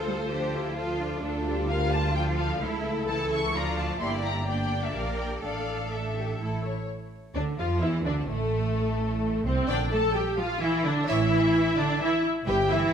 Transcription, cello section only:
0, 0, Header, 1, 2, 480
1, 0, Start_track
1, 0, Key_signature, -1, "minor"
1, 0, Tempo, 462963
1, 1273, Time_signature, 3, 2, 24, 8
1, 4157, Tempo, 478088
1, 7517, Tempo, 465116
1, 13272, End_track
2, 0, Start_track
2, 0, Title_t, "Cello section"
2, 0, Program_c, 0, 48
2, 0, Note_on_c, 0, 69, 56
2, 314, Note_on_c, 0, 67, 52
2, 315, Note_off_c, 0, 69, 0
2, 785, Note_off_c, 0, 67, 0
2, 796, Note_on_c, 0, 65, 64
2, 1264, Note_off_c, 0, 65, 0
2, 1275, Note_on_c, 0, 62, 56
2, 1751, Note_off_c, 0, 62, 0
2, 1757, Note_on_c, 0, 65, 64
2, 2712, Note_on_c, 0, 64, 59
2, 2713, Note_off_c, 0, 65, 0
2, 3185, Note_off_c, 0, 64, 0
2, 3197, Note_on_c, 0, 69, 60
2, 3668, Note_off_c, 0, 69, 0
2, 3676, Note_on_c, 0, 65, 63
2, 4146, Note_off_c, 0, 65, 0
2, 4149, Note_on_c, 0, 64, 56
2, 4615, Note_off_c, 0, 64, 0
2, 4626, Note_on_c, 0, 62, 48
2, 5095, Note_off_c, 0, 62, 0
2, 5102, Note_on_c, 0, 70, 52
2, 5583, Note_on_c, 0, 69, 41
2, 5588, Note_off_c, 0, 70, 0
2, 6776, Note_off_c, 0, 69, 0
2, 7514, Note_on_c, 0, 50, 56
2, 7741, Note_off_c, 0, 50, 0
2, 7757, Note_on_c, 0, 53, 59
2, 7995, Note_off_c, 0, 53, 0
2, 8002, Note_on_c, 0, 52, 70
2, 8230, Note_on_c, 0, 50, 57
2, 8241, Note_off_c, 0, 52, 0
2, 8470, Note_on_c, 0, 45, 57
2, 8471, Note_off_c, 0, 50, 0
2, 9677, Note_on_c, 0, 48, 64
2, 9679, Note_off_c, 0, 45, 0
2, 9918, Note_on_c, 0, 50, 73
2, 9922, Note_off_c, 0, 48, 0
2, 10000, Note_off_c, 0, 50, 0
2, 10162, Note_on_c, 0, 57, 71
2, 10245, Note_off_c, 0, 57, 0
2, 10402, Note_on_c, 0, 55, 63
2, 10484, Note_off_c, 0, 55, 0
2, 10639, Note_on_c, 0, 53, 66
2, 10722, Note_off_c, 0, 53, 0
2, 10882, Note_on_c, 0, 52, 84
2, 11120, Note_on_c, 0, 50, 78
2, 11121, Note_off_c, 0, 52, 0
2, 11356, Note_on_c, 0, 52, 80
2, 11364, Note_off_c, 0, 50, 0
2, 12065, Note_off_c, 0, 52, 0
2, 12084, Note_on_c, 0, 50, 73
2, 12320, Note_off_c, 0, 50, 0
2, 12323, Note_on_c, 0, 52, 83
2, 12405, Note_off_c, 0, 52, 0
2, 12792, Note_on_c, 0, 55, 86
2, 12874, Note_off_c, 0, 55, 0
2, 13038, Note_on_c, 0, 52, 83
2, 13272, Note_off_c, 0, 52, 0
2, 13272, End_track
0, 0, End_of_file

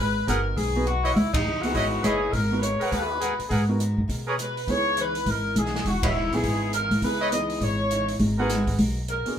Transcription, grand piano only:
0, 0, Header, 1, 2, 480
1, 0, Start_track
1, 0, Key_signature, 5, "minor"
1, 0, Tempo, 293542
1, 1889, Time_signature, 4, 2, 24, 8
1, 15350, End_track
2, 0, Start_track
2, 0, Title_t, "Grand piano"
2, 0, Program_c, 0, 0
2, 444, Note_on_c, 0, 59, 52
2, 455, Note_on_c, 0, 63, 44
2, 467, Note_on_c, 0, 66, 47
2, 477, Note_on_c, 0, 70, 57
2, 1162, Note_off_c, 0, 59, 0
2, 1168, Note_off_c, 0, 63, 0
2, 1174, Note_off_c, 0, 66, 0
2, 1179, Note_off_c, 0, 70, 0
2, 1231, Note_on_c, 0, 59, 65
2, 1238, Note_on_c, 0, 63, 59
2, 1242, Note_on_c, 0, 66, 64
2, 1256, Note_on_c, 0, 71, 69
2, 1394, Note_off_c, 0, 59, 0
2, 1398, Note_off_c, 0, 63, 0
2, 1400, Note_off_c, 0, 66, 0
2, 1406, Note_off_c, 0, 71, 0
2, 2667, Note_on_c, 0, 59, 64
2, 2674, Note_on_c, 0, 63, 54
2, 2681, Note_on_c, 0, 64, 54
2, 2694, Note_on_c, 0, 68, 67
2, 3294, Note_off_c, 0, 59, 0
2, 3297, Note_off_c, 0, 63, 0
2, 3300, Note_off_c, 0, 64, 0
2, 3307, Note_off_c, 0, 68, 0
2, 4106, Note_on_c, 0, 59, 61
2, 4116, Note_on_c, 0, 63, 54
2, 4128, Note_on_c, 0, 66, 55
2, 4132, Note_on_c, 0, 70, 63
2, 4271, Note_off_c, 0, 59, 0
2, 4277, Note_off_c, 0, 63, 0
2, 4283, Note_off_c, 0, 66, 0
2, 4285, Note_off_c, 0, 70, 0
2, 6016, Note_on_c, 0, 59, 64
2, 6032, Note_on_c, 0, 63, 56
2, 6040, Note_on_c, 0, 66, 59
2, 6046, Note_on_c, 0, 70, 68
2, 6186, Note_off_c, 0, 59, 0
2, 6194, Note_off_c, 0, 63, 0
2, 6199, Note_off_c, 0, 66, 0
2, 6202, Note_off_c, 0, 70, 0
2, 7656, Note_on_c, 0, 59, 56
2, 7659, Note_on_c, 0, 63, 50
2, 7670, Note_on_c, 0, 64, 50
2, 7682, Note_on_c, 0, 68, 59
2, 8368, Note_off_c, 0, 59, 0
2, 8369, Note_off_c, 0, 63, 0
2, 8375, Note_off_c, 0, 64, 0
2, 8381, Note_off_c, 0, 68, 0
2, 10348, Note_on_c, 0, 59, 65
2, 10353, Note_on_c, 0, 63, 59
2, 10364, Note_on_c, 0, 64, 58
2, 10372, Note_on_c, 0, 68, 70
2, 10973, Note_off_c, 0, 59, 0
2, 10976, Note_off_c, 0, 63, 0
2, 10981, Note_off_c, 0, 64, 0
2, 10985, Note_off_c, 0, 68, 0
2, 11498, Note_on_c, 0, 59, 52
2, 11509, Note_on_c, 0, 63, 47
2, 11513, Note_on_c, 0, 64, 52
2, 11527, Note_on_c, 0, 68, 60
2, 11936, Note_off_c, 0, 59, 0
2, 11946, Note_off_c, 0, 63, 0
2, 11953, Note_off_c, 0, 64, 0
2, 11960, Note_on_c, 0, 59, 50
2, 11964, Note_off_c, 0, 68, 0
2, 11971, Note_on_c, 0, 63, 48
2, 11978, Note_on_c, 0, 64, 44
2, 11989, Note_on_c, 0, 68, 57
2, 12679, Note_off_c, 0, 59, 0
2, 12684, Note_off_c, 0, 63, 0
2, 12688, Note_off_c, 0, 64, 0
2, 12693, Note_off_c, 0, 68, 0
2, 13701, Note_on_c, 0, 59, 65
2, 13714, Note_on_c, 0, 63, 63
2, 13727, Note_on_c, 0, 66, 64
2, 13732, Note_on_c, 0, 70, 73
2, 13868, Note_off_c, 0, 59, 0
2, 13874, Note_off_c, 0, 63, 0
2, 13880, Note_off_c, 0, 66, 0
2, 13883, Note_off_c, 0, 70, 0
2, 15140, Note_on_c, 0, 59, 51
2, 15154, Note_on_c, 0, 62, 48
2, 15159, Note_on_c, 0, 66, 52
2, 15167, Note_on_c, 0, 68, 60
2, 15307, Note_off_c, 0, 59, 0
2, 15314, Note_off_c, 0, 62, 0
2, 15316, Note_off_c, 0, 66, 0
2, 15321, Note_off_c, 0, 68, 0
2, 15350, End_track
0, 0, End_of_file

